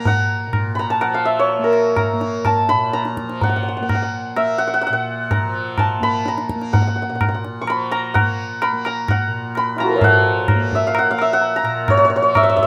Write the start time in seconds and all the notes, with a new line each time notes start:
Already playing: A#2 F3 A#3 A#5
0.05 F#5, tabla tin, tabla ge
0.47 A#2
0.53 tabla na, tabla ge
0.75 B5
0.79 A#5
0.90 A5
1.01 F3 F#5, tabla na
1.14 F5
1.25 E5
1.39 C#5
1.49 tabla tin
1.59 A#3
1.64 A#4
1.73 tabla na
1.96 A#5, tabla na, tabla ge
2.13 A#3
2.21 tabla te
2.45 A5, tabla na, tabla ge
2.69 A#2 B5, tabla te
2.93 A#5, tabla te
3.05 tabla te
3.17 tabla ke
3.24 F3
3.29 tabla te
3.41 F#5, tabla tin, tabla ge
3.49 F#5
3.56 F#5
3.63 F#5
3.68 F#5
3.77 A#3 F#5
3.83 F#5
3.89 F#5, tabla na, tabla ge
3.95 F#5
4.02 F#5
4.36 A#3 E5, tabla na
4.58 F#5
4.67 F#5
4.74 F#5
4.81 F#5, tabla tin
4.87 A#2 F#5
4.93 F#5
5.31 A#5, tabla na, tabla ge
5.43 F3
5.78 A5, tabla na, tabla ge
6.00 A#3 B5, tabla ge
6.26 A#5, tabla te
6.38 tabla te
6.49 tabla ke
6.55 A#3
6.61 tabla te
6.73 F#5, tabla tin, tabla ge
6.82 F#5
6.87 F#5
6.96 F#5
7.02 F#5
7.09 A#2 F#5
7.15 F#5
7.21 F#5, tabla na, tabla ge
7.29 F#5
7.34 F#5
7.45 tabla te
7.61 F3 C#6
7.67 B5, tabla na
7.91 A#5, tabla na
8.14 F#5, tabla na, tabla ge
8.19 A#3
8.62 B5, tabla na
8.73 A#3
8.85 A#5, tabla na
9.08 F#5, tabla na, tabla ge
9.27 A#2
9.55 B5, tabla na
9.76 E4 F4, tabla na
9.80 F3 F#4 A#5
9.86 A4 A#4
9.92 B4 C#5
9.98 E5 F5, tabla tin, tabla ge
10.02 F3 F#5
10.48 tabla na, tabla ge
10.55 A#3
10.72 E5, tabla ge
10.87 F5
10.95 F#5, tabla na
11.10 A#3 F5
11.19 E5, tabla na
11.33 F#5
11.42 tabla tin
11.56 A#5
11.63 A#2, tabla na
11.88 C#5, tabla na, tabla ge
11.97 C#5
12.05 C#5
12.10 C#5
12.16 F3 C#5
12.22 C#5
12.35 E5, tabla na, tabla ge
12.43 E5
12.49 E5
12.56 E5, tabla ge
12.63 E5